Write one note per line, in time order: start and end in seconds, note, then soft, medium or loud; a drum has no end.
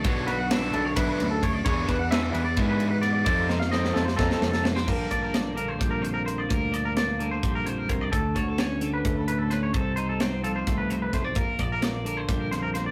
0.00 0.72 D3 medium
0.00 0.51 D4 medium
0.00 0.27 C#5 medium
0.04 0.70 B1 loud
0.04 0.74 B2 medium
0.04 0.34 F#3 medium
0.04 0.35 B3 medium
0.04 0.35 D4 loud
0.04 0.35 F#4 medium
0.04 kick loud
0.04 ride loud
0.27 0.96 F#4 medium
0.27 0.38 B4 medium
0.27 snare soft
0.27 ride medium
0.39 0.50 F#5 medium
0.50 0.81 F#3 medium
0.50 0.81 B3 medium
0.50 1.41 D4 medium
0.50 0.81 D4 loud
0.50 0.81 F#4 loud
0.50 0.73 E5 medium
0.50 snare loud
0.50 ride loud
0.73 0.95 B1 medium
0.73 2.32 D3 medium
0.73 0.85 A4 medium
0.73 ride medium
0.85 0.96 C#5 medium
0.96 1.08 B1 medium
0.96 1.26 F#3 medium
0.96 1.27 B3 medium
0.96 1.27 D4 loud
0.96 1.63 E4 medium
0.96 1.27 F#4 medium
0.96 1.07 B4 medium
0.96 kick loud
0.96 ride loud
1.08 1.30 B4 medium
1.19 1.63 D2 loud
1.19 1.63 F#2 medium
1.19 snare soft
1.19 ride medium
1.31 1.42 A4 medium
1.42 1.63 D4 medium
1.42 1.53 C#5 medium
1.42 kick medium
1.42 ride medium
1.53 1.64 D5 medium
1.65 3.24 E2 medium
1.65 1.87 E2 loud
1.65 1.96 E3 medium
1.65 1.96 B3 loud
1.65 1.96 D4 loud
1.65 1.96 G#4 medium
1.65 1.88 C#5 medium
1.65 kick loud
1.65 ride loud
1.88 2.32 E2 medium
1.88 2.57 D4 medium
1.88 2.00 B4 medium
1.88 kick medium
1.88 snare soft
1.88 ride medium
1.99 2.10 F#5 medium
2.11 2.41 E3 medium
2.11 3.01 B3 medium
2.11 2.42 B3 medium
2.11 2.42 D4 medium
2.11 2.42 G#4 loud
2.11 2.34 E5 medium
2.11 snare loud
2.11 ride loud
2.33 2.56 E2 medium
2.33 3.23 E3 medium
2.33 2.44 B4 medium
2.33 ride medium
2.45 2.56 D5 medium
2.56 3.23 G#2 medium
2.56 2.88 E3 medium
2.56 2.88 B3 medium
2.56 2.88 D4 loud
2.56 3.24 E4 medium
2.56 2.88 G#4 loud
2.56 2.67 B4 medium
2.56 kick loud
2.56 snare soft
2.56 ride loud
2.69 2.90 B4 medium
2.80 3.24 B2 medium
2.80 ride medium
2.91 3.01 B4 medium
3.01 3.24 B3 medium
3.01 3.12 D5 medium
3.01 snare soft
3.01 ride medium
3.13 3.24 D5 medium
3.25 4.85 F2 medium
3.25 3.92 F2 loud
3.25 3.57 F3 medium
3.25 3.57 C4 medium
3.25 3.57 D#4 loud
3.25 3.57 A4 loud
3.25 3.49 D5 medium
3.25 kick loud
3.25 ride medium
3.49 4.18 D#4 medium
3.49 3.59 C5 medium
3.49 snare medium
3.60 3.71 F5 medium
3.60 snare medium
3.71 4.03 F3 medium
3.71 4.03 C4 medium
3.71 4.63 C4 medium
3.71 4.03 D#4 medium
3.71 4.03 A4 loud
3.71 3.95 D#5 medium
3.71 snare medium
3.85 snare medium
3.93 4.18 F2 medium
3.93 4.84 F3 medium
3.93 4.05 A4 medium
3.93 snare medium
4.05 4.16 C5 medium
4.05 snare medium
4.16 4.30 F2 medium
4.16 4.48 F3 medium
4.16 4.49 C4 medium
4.16 4.49 D#4 loud
4.16 4.86 D#4 medium
4.16 4.29 A4 medium
4.16 4.49 A4 medium
4.16 kick loud
4.16 snare medium
4.30 4.50 A4 medium
4.30 snare medium
4.41 4.85 F2 loud
4.41 4.85 C3 medium
4.41 snare loud
4.52 4.64 A4 medium
4.52 snare medium
4.63 4.75 A3 medium
4.63 4.75 C5 medium
4.63 snare loud
4.75 4.88 C4 medium
4.75 4.87 C5 medium
4.75 snare medium
4.87 5.10 A#1 loud
4.87 5.58 A#2 medium
4.87 5.54 D3 medium
4.87 5.78 G3 medium
4.87 5.34 A#3 medium
4.87 5.11 D4 medium
4.87 5.11 A#4 medium
4.87 kick loud
4.87 crash medium
5.11 5.77 A#1 medium
5.11 6.72 D4 medium
5.11 5.22 D5 medium
5.11 kick medium
5.11 closed hi-hat medium
5.22 5.34 A#4 medium
5.34 6.24 A#3 medium
5.34 5.56 D5 medium
5.34 snare loud
5.34 closed hi-hat medium
5.55 7.18 D3 medium
5.55 5.68 A#4 medium
5.55 closed hi-hat medium
5.68 5.90 C5 medium
5.79 6.46 A#1 medium
5.79 7.42 G3 medium
5.79 kick loud
5.79 closed hi-hat medium
5.91 6.02 A#4 medium
6.01 6.46 F2 medium
6.01 6.13 C5 medium
6.01 closed hi-hat medium
6.14 6.26 A#4 medium
6.25 6.47 A#3 medium
6.25 6.38 C5 medium
6.25 closed hi-hat medium
6.38 6.50 D5 medium
6.49 7.39 D2 medium
6.49 7.19 A#2 medium
6.49 6.74 A#4 medium
6.49 kick loud
6.49 closed hi-hat medium
6.72 8.35 D4 medium
6.72 6.85 D5 medium
6.72 closed hi-hat medium
6.85 6.96 A#4 medium
6.97 7.88 A#3 medium
6.97 7.20 D5 medium
6.97 snare loud
6.97 closed hi-hat medium
7.19 8.80 D3 medium
7.19 7.31 A#4 medium
7.19 closed hi-hat medium
7.31 7.54 C5 medium
7.43 7.86 A#1 medium
7.43 8.13 G3 medium
7.43 kick loud
7.43 closed hi-hat medium
7.55 7.66 A#4 medium
7.65 8.09 F2 medium
7.65 7.78 C5 medium
7.65 closed hi-hat medium
7.78 7.89 A#4 medium
7.89 8.14 C2 medium
7.89 8.10 A#3 medium
7.89 8.01 C5 medium
7.89 kick medium
7.89 closed hi-hat medium
8.01 8.12 D5 medium
8.10 9.73 D2 medium
8.10 8.35 D2 loud
8.10 8.36 A4 medium
8.10 kick loud
8.10 closed hi-hat medium
8.35 9.01 D2 medium
8.35 9.71 F#4 medium
8.35 8.48 C#5 medium
8.35 kick medium
8.35 closed hi-hat medium
8.48 8.60 A4 medium
8.58 9.51 C#4 medium
8.58 8.83 C#5 medium
8.58 snare loud
8.58 closed hi-hat medium
8.81 9.74 D3 medium
8.81 8.93 A4 medium
8.81 closed hi-hat medium
8.94 9.17 B4 medium
9.05 9.70 D2 medium
9.05 9.72 A3 medium
9.05 kick loud
9.05 closed hi-hat medium
9.17 9.27 A4 medium
9.28 9.74 A2 medium
9.28 9.39 B4 medium
9.28 closed hi-hat medium
9.38 9.50 A4 medium
9.50 9.72 C#4 medium
9.50 9.62 B4 medium
9.50 snare soft
9.50 closed hi-hat medium
9.63 9.73 C#5 medium
9.73 10.63 C2 loud
9.73 10.44 C3 medium
9.73 9.96 A4 medium
9.73 kick loud
9.73 closed hi-hat medium
9.96 11.33 D#4 medium
9.96 10.08 C5 medium
9.96 closed hi-hat medium
10.09 10.20 A4 medium
10.20 11.13 C4 medium
10.20 10.43 C5 medium
10.20 snare loud
10.20 closed hi-hat medium
10.44 12.04 F3 medium
10.44 10.55 A4 medium
10.44 closed hi-hat medium
10.56 10.77 C5 medium
10.67 11.10 C2 medium
10.67 11.13 A3 medium
10.67 kick loud
10.67 snare soft
10.67 closed hi-hat medium
10.78 10.90 B4 medium
10.90 11.34 C3 medium
10.90 11.01 C5 medium
10.90 closed hi-hat medium
11.02 11.13 B4 medium
11.13 11.36 B1 medium
11.13 11.24 A3 medium
11.13 11.24 C5 medium
11.13 kick medium
11.13 snare soft
11.13 closed hi-hat medium
11.24 11.36 C4 soft
11.24 11.36 D5 medium
11.35 11.58 A#1 loud
11.35 12.05 A#2 medium
11.35 11.60 A#4 medium
11.35 kick loud
11.35 closed hi-hat medium
11.59 12.24 A#1 medium
11.59 12.91 D4 medium
11.59 11.71 D5 medium
11.59 kick medium
11.59 closed hi-hat medium
11.72 11.82 A#4 medium
11.81 12.74 A#3 medium
11.81 12.06 D5 medium
11.81 snare loud
11.81 closed hi-hat medium
12.05 12.91 D3 medium
12.05 12.17 A#4 medium
12.05 closed hi-hat medium
12.17 12.39 C5 medium
12.28 12.91 A#1 medium
12.28 12.91 G3 medium
12.28 kick loud
12.28 snare soft
12.28 closed hi-hat medium
12.39 12.51 A#4 medium
12.51 12.91 F2 medium
12.51 12.62 C5 medium
12.51 snare soft
12.51 closed hi-hat medium
12.62 12.74 A#4 medium
12.74 12.91 A#3 medium
12.74 12.86 C5 medium
12.74 snare soft
12.74 closed hi-hat medium
12.86 12.91 D5 medium